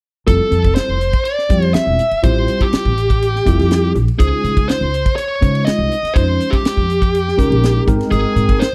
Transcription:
0.27 0.38 F1 medium
0.27 0.96 G3 medium
0.27 0.96 C4 soft
0.27 0.96 E4 medium
0.27 0.97 F4 soft
0.27 0.75 A4 medium
0.27 0.97 A4 medium
0.27 kick medium
0.27 hi-hat pedal medium
0.27 ride medium
0.51 0.62 F2 medium
0.51 hi-hat pedal medium
0.51 ride soft
0.64 0.75 F1 medium
0.64 kick medium
0.64 ride medium
0.75 1.26 C5 medium
0.75 snare medium
0.75 hi-hat pedal medium
0.75 ride medium
0.89 1.10 F1 medium
1.01 hi-hat pedal medium
1.01 ride medium
1.13 kick medium
1.13 ride medium
1.24 1.74 D5 medium
1.24 hi-hat pedal medium
1.24 ride medium
1.39 snare soft
1.49 1.71 F2 medium
1.49 2.01 G3 medium
1.49 2.02 C4 medium
1.49 2.02 E4 medium
1.49 2.02 F4 medium
1.49 2.02 G4 medium
1.49 kick medium
1.49 hi-hat pedal medium
1.49 ride medium
1.62 ride medium
1.74 2.20 E5 medium
1.74 muted upright bass stroke soft
1.74 snare loud
1.74 hi-hat pedal medium
1.74 ride medium
1.87 1.97 E1 medium
1.99 hi-hat pedal medium
1.99 ride medium
2.11 muted upright bass stroke soft
2.11 ride medium
2.22 2.45 A1 medium
2.22 2.92 G3 medium
2.22 2.92 C4 medium
2.22 2.92 E4 medium
2.22 2.92 F4 medium
2.22 2.93 G4 medium
2.22 2.62 C5 medium
2.22 kick medium
2.22 hi-hat pedal medium
2.22 ride medium
2.48 hi-hat pedal medium
2.48 ride medium
2.61 3.92 G4 medium
2.61 kick medium
2.61 ride soft
2.73 muted upright bass stroke soft
2.73 snare loud
2.73 hi-hat pedal medium
2.73 ride medium
2.85 3.38 A1 medium
2.85 kick medium
2.98 hi-hat pedal medium
2.98 ride soft
3.10 kick medium
3.10 ride soft
3.22 hi-hat pedal medium
3.22 ride medium
3.36 snare soft
3.45 3.57 F1 medium
3.45 3.97 G3 medium
3.45 3.98 C4 medium
3.45 3.98 E4 medium
3.45 3.98 F4 medium
3.45 3.98 A4 medium
3.45 kick medium
3.45 hi-hat pedal medium
3.45 ride soft
3.59 3.90 F2 medium
3.59 snare soft
3.59 ride soft
3.71 snare medium
3.71 hi-hat pedal medium
3.71 ride medium
3.95 4.06 A#1 medium
3.95 hi-hat pedal medium
3.95 ride soft
4.08 ride soft
4.18 4.31 C#2 medium
4.18 4.88 G#3 medium
4.18 4.88 C#4 medium
4.18 4.88 D#4 medium
4.18 4.88 F4 medium
4.18 4.70 G#4 medium
4.18 4.88 C5 medium
4.18 kick medium
4.18 hi-hat pedal medium
4.18 ride medium
4.44 4.55 C#3 medium
4.44 hi-hat pedal medium
4.44 ride medium
4.57 4.67 C#2 medium
4.57 kick medium
4.57 ride soft
4.68 5.16 C5 medium
4.68 snare loud
4.68 hi-hat pedal medium
4.68 ride medium
4.81 5.02 C#2 medium
4.94 hi-hat pedal medium
4.94 ride medium
5.06 kick medium
5.06 ride medium
5.16 5.67 C#5 medium
5.16 hi-hat pedal medium
5.16 ride medium
5.41 5.63 C#3 medium
5.41 5.93 G#3 medium
5.41 5.94 C#4 medium
5.41 5.94 D#4 medium
5.41 5.94 F4 medium
5.41 5.94 C5 medium
5.41 kick medium
5.41 hi-hat pedal medium
5.41 ride soft
5.55 ride medium
5.65 6.16 D#5 medium
5.65 muted upright bass stroke soft
5.65 snare medium
5.65 hi-hat pedal medium
5.65 ride medium
5.79 5.89 C2 medium
5.92 hi-hat pedal medium
5.92 ride medium
6.03 muted upright bass stroke soft
6.03 snare soft
6.03 ride medium
6.14 6.37 F2 medium
6.14 6.84 G#3 medium
6.14 6.84 C#4 medium
6.14 6.85 D#4 medium
6.14 6.85 F4 medium
6.14 6.53 C5 medium
6.14 6.85 C5 medium
6.14 kick medium
6.14 hi-hat pedal medium
6.14 ride medium
6.40 hi-hat pedal medium
6.40 ride medium
6.51 7.82 G4 medium
6.51 kick medium
6.51 ride medium
6.63 muted upright bass stroke soft
6.63 snare loud
6.63 hi-hat pedal medium
6.63 ride medium
6.77 7.30 F2 medium
6.77 kick medium
6.90 hi-hat pedal medium
6.90 ride soft
7.02 kick medium
7.02 ride medium
7.15 hi-hat pedal medium
7.15 ride medium
7.28 snare soft
7.37 7.49 C#2 medium
7.37 7.85 G#3 medium
7.37 7.87 C#4 medium
7.37 7.86 D#4 medium
7.37 7.87 F4 medium
7.37 7.87 A#4 medium
7.37 kick medium
7.37 hi-hat pedal medium
7.37 ride soft
7.50 7.82 A#1 medium
7.50 ride soft
7.63 snare medium
7.63 hi-hat pedal medium
7.63 ride medium
7.86 7.98 G#1 medium
7.86 8.65 G#3 medium
7.86 8.66 C4 medium
7.86 8.66 D#4 medium
7.86 8.66 A#4 medium
7.86 8.66 G5 medium
7.86 kick medium
7.86 hi-hat pedal medium
7.86 ride soft
8.01 snare soft
8.01 ride medium
8.11 8.22 G#1 medium
8.11 8.62 G#4 medium
8.11 hi-hat pedal medium
8.11 ride medium
8.36 8.47 G#2 medium
8.36 hi-hat pedal medium
8.36 ride soft
8.49 8.59 G#1 medium
8.49 kick medium
8.49 ride soft
8.59 8.75 C5 medium
8.59 snare loud
8.59 hi-hat pedal medium
8.59 ride medium

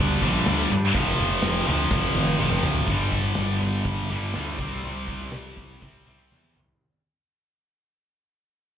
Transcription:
0.00 0.15 D2 medium
0.00 0.20 G2 loud
0.00 0.21 D3 loud
0.00 0.22 G3 medium
0.22 0.40 A#1 medium
0.22 0.71 G2 medium
0.22 0.70 D3 medium
0.22 0.69 G3 loud
0.22 kick medium
0.22 crash medium
0.46 0.64 D2 medium
0.46 snare loud
0.46 crash medium
0.71 0.88 G2 loud
0.71 crash medium
0.94 1.12 F1 medium
0.94 1.65 F2 medium
0.94 1.66 C3 medium
0.94 1.66 F3 loud
0.94 kick loud
0.94 crash medium
1.18 1.37 F1 medium
1.18 crash medium
1.42 1.61 F1 loud
1.42 snare loud
1.42 crash loud
1.67 1.85 D2 loud
1.67 2.38 F2 medium
1.67 2.39 C3 medium
1.67 2.38 F3 medium
1.67 crash medium
1.91 2.08 F1 medium
1.91 kick loud
1.91 snare medium
2.15 2.33 F1 loud
2.15 high tom medium
2.39 2.58 F1 medium
2.39 2.87 F2 medium
2.39 2.87 C3 medium
2.39 2.88 F3 loud
2.39 mid tom medium
2.51 mid tom medium
2.63 2.82 D2 loud
2.63 floor tom loud
2.75 floor tom loud
2.87 3.31 G1 medium
2.87 4.09 G2 medium
2.87 4.10 D3 medium
2.87 kick medium
2.87 open hi-hat soft
2.92 4.10 G3 medium
3.12 kick medium
3.35 3.59 G1 medium
3.35 snare loud
3.35 open hi-hat soft
3.62 3.83 G1 medium
3.73 snare soft
3.84 4.07 G1 medium
3.84 kick loud
3.84 open hi-hat soft
4.10 4.32 G1 medium
4.10 4.35 G2 medium
4.10 4.34 D3 medium
4.10 4.38 G3 medium
4.34 4.57 D2 medium
4.34 4.59 G2 medium
4.34 4.59 D3 medium
4.34 snare medium
4.34 open hi-hat soft
4.38 4.60 G3 medium
4.59 4.81 C2 medium
4.59 5.81 C3 medium
4.59 5.81 G3 medium
4.59 5.82 C4 medium
4.59 kick medium
4.82 5.06 C2 medium
4.82 open hi-hat soft
5.08 5.30 C2 medium
5.08 kick medium
5.20 snare soft
5.32 5.55 C2 medium
5.32 snare loud
5.32 open hi-hat soft
5.57 5.79 C2 medium
5.57 kick medium
5.70 snare soft
5.82 6.04 C2 medium
5.82 6.05 C3 medium
5.82 6.06 G3 medium
5.82 6.05 C4 medium
5.82 kick medium
5.82 open hi-hat soft
6.07 6.30 C2 medium
6.07 6.56 C3 medium
6.07 6.55 G3 medium
6.07 6.54 C4 medium
6.32 6.53 E2 medium
6.32 snare medium
6.44 high tom soft
6.56 6.79 C2 medium
6.56 mid tom medium
6.68 floor tom medium

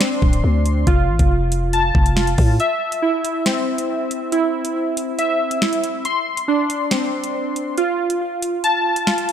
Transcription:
0.00 0.87 C4 medium
0.00 0.87 D4 loud
0.00 0.87 C6 loud
0.00 finger snap loud
0.00 snare loud
0.00 closed hi-hat medium
0.22 0.43 D1 loud
0.22 kick loud
0.33 closed hi-hat medium
0.44 0.85 D2 loud
0.66 closed hi-hat medium
0.87 1.10 F1 loud
0.87 2.15 F4 loud
0.87 kick loud
0.87 closed hi-hat medium
1.09 1.19 A1 loud
1.19 1.92 F1 loud
1.19 kick medium
1.19 closed hi-hat medium
1.52 closed hi-hat medium
1.73 2.60 A5 loud
1.73 closed hi-hat medium
1.95 2.36 F1 loud
1.95 kick loud
2.06 closed hi-hat medium
2.16 2.59 F4 medium
2.16 finger snap medium
2.16 snare loud
2.27 closed hi-hat medium
2.38 2.59 A2 loud
2.38 kick medium
2.38 closed hi-hat medium
2.38 open hi-hat medium
2.60 5.17 E5 loud
2.60 closed hi-hat medium
2.92 closed hi-hat medium
3.02 4.31 E4 medium
3.25 closed hi-hat medium
3.46 6.05 C4 loud
3.46 finger snap loud
3.46 snare loud
3.46 closed hi-hat medium
3.78 closed hi-hat medium
4.11 closed hi-hat medium
4.32 5.61 E4 loud
4.32 closed hi-hat medium
4.65 closed hi-hat medium
4.97 closed hi-hat medium
5.19 6.05 E5 loud
5.19 closed hi-hat medium
5.51 closed hi-hat medium
5.62 6.05 E4 medium
5.62 finger snap medium
5.62 snare loud
5.73 closed hi-hat medium
5.84 closed hi-hat medium
6.05 7.78 C6 loud
6.05 closed hi-hat medium
6.37 closed hi-hat medium
6.48 7.78 D4 loud
6.70 closed hi-hat medium
6.91 7.78 C4 medium
6.91 finger snap loud
6.91 snare loud
6.91 closed hi-hat medium
7.24 closed hi-hat medium
7.56 closed hi-hat medium
7.78 9.05 F4 loud
7.78 closed hi-hat medium
8.10 closed hi-hat medium
8.42 closed hi-hat medium
8.64 9.32 A5 loud
8.64 closed hi-hat medium
8.96 closed hi-hat medium
9.07 9.32 F4 medium
9.07 finger snap medium
9.07 snare loud
9.18 closed hi-hat medium
9.29 closed hi-hat medium
9.29 open hi-hat medium

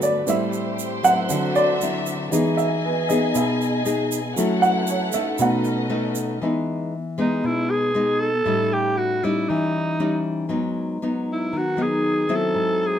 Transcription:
0.00 0.29 G2 soft
0.00 0.25 D3 medium
0.00 0.29 F#3 soft
0.00 1.26 A3 medium
0.00 0.24 B3 medium
0.00 0.29 B3 soft
0.00 0.24 F#4 medium
0.00 0.25 F#4 medium
0.00 0.24 A4 medium
0.00 0.25 B4 medium
0.00 0.28 B4 soft
0.00 0.03 D5 medium
0.00 0.27 D5 medium
0.00 0.28 F#5 medium
0.00 shaker medium
0.26 0.61 A2 soft
0.26 1.27 A2 medium
0.26 0.61 G3 soft
0.26 1.00 G3 medium
0.26 0.61 C4 soft
0.26 1.00 C4 medium
0.26 1.00 E4 medium
0.26 1.28 G4 medium
0.26 2.29 C5 medium
0.26 1.01 E5 medium
0.26 shaker medium
0.53 shaker soft
0.79 shaker medium
1.03 1.76 F#3 medium
1.03 1.77 C4 medium
1.03 1.77 E4 medium
1.03 1.52 F#5 medium
1.03 shaker medium
1.29 2.02 D3 soft
1.29 2.29 D3 medium
1.29 2.03 F#3 soft
1.29 2.03 C4 soft
1.29 2.31 D4 medium
1.29 2.31 F#4 medium
1.29 2.32 E5 medium
1.29 shaker medium
1.55 2.03 D5 medium
1.55 shaker soft
1.81 2.28 F#3 medium
1.81 2.29 C4 medium
1.81 2.29 E4 medium
1.81 shaker medium
2.06 shaker medium
2.31 3.04 E3 soft
2.31 3.32 E3 medium
2.31 3.05 G#3 soft
2.31 2.83 B3 soft
2.31 3.05 D#4 soft
2.31 2.83 D#4 medium
2.31 2.83 G#4 medium
2.31 4.35 G#4 medium
2.31 4.35 D#5 medium
2.31 4.35 G#5 medium
2.31 shaker medium
2.57 2.82 E5 medium
2.57 shaker soft
2.85 3.09 B4 soft
3.09 3.82 B3 medium
3.09 3.82 D#4 medium
3.09 3.82 G#4 medium
3.09 3.34 D#5 medium
3.09 shaker medium
3.35 4.34 B2 medium
3.35 3.60 E5 medium
3.35 shaker medium
3.61 shaker soft
3.85 4.18 B3 medium
3.85 4.18 D#4 medium
3.85 4.19 G#4 medium
3.85 shaker medium
4.12 shaker medium
4.35 4.70 F#3 soft
4.35 5.14 F#3 medium
4.35 4.70 A3 soft
4.35 5.10 C#4 medium
4.35 5.37 E4 medium
4.35 4.71 E4 soft
4.35 5.10 E4 medium
4.35 6.38 A4 medium
4.35 5.10 A4 medium
4.35 5.37 F#5 medium
4.35 shaker medium
4.62 4.87 F#5 medium
4.62 shaker soft
4.87 5.14 C#5 medium
4.87 shaker medium
5.12 5.86 A3 medium
5.12 5.87 C#4 medium
5.12 5.87 D#4 medium
5.12 5.38 E5 medium
5.12 shaker medium
5.38 6.39 B2 medium
5.38 5.73 B2 soft
5.38 5.73 A3 soft
5.38 6.41 C#4 medium
5.38 5.73 D#4 soft
5.38 6.41 B4 medium
5.38 6.41 D#5 medium
5.38 5.56 F#5 medium
5.38 shaker medium
5.64 shaker soft
5.90 6.37 A3 medium
5.90 6.37 C#4 medium
5.90 6.37 D#4 medium
6.15 shaker medium
6.42 7.41 E3 medium
6.42 6.92 G#3 soft
6.42 6.93 B3 soft
6.42 6.93 D#4 medium
7.18 7.91 G#3 medium
7.18 7.91 B3 medium
7.18 7.91 D#4 medium
7.18 7.48 D#4 medium
7.44 8.43 B2 medium
7.44 7.72 E4 loud
7.70 8.22 G#4 medium
7.95 8.28 G#3 medium
7.95 8.28 B3 medium
7.95 8.28 D#4 medium
8.20 8.75 A4 loud
8.45 9.46 A2 medium
8.45 9.18 G3 soft
8.45 9.19 C#4 soft
8.45 9.19 D#4 medium
8.73 8.99 G4 medium
8.97 9.26 F#4 medium
9.24 9.96 G3 medium
9.24 9.96 C#4 medium
9.24 9.96 D#4 medium
9.24 9.50 E4 medium
9.49 10.49 E3 medium
9.49 10.25 D#4 medium
10.00 10.47 G3 medium
10.00 10.47 C#4 medium
10.00 10.47 D#4 medium
10.49 11.49 G#2 medium
10.49 10.97 F#3 medium
10.49 10.97 B3 soft
10.49 10.97 D#4 medium
11.02 11.75 F#3 medium
11.02 11.75 B3 soft
11.02 11.75 D#4 medium
11.33 11.59 E4 medium
11.53 12.53 D#3 medium
11.57 11.83 F#4 loud
11.77 12.25 F#3 medium
11.77 12.25 B3 medium
11.77 12.25 D#4 medium
11.82 12.37 G#4 loud
12.29 12.99 F#3 medium
12.29 12.99 C4 medium
12.29 12.99 E4 medium
12.35 12.88 A4 loud
12.54 12.99 G#2 medium
12.86 12.99 G#4 loud

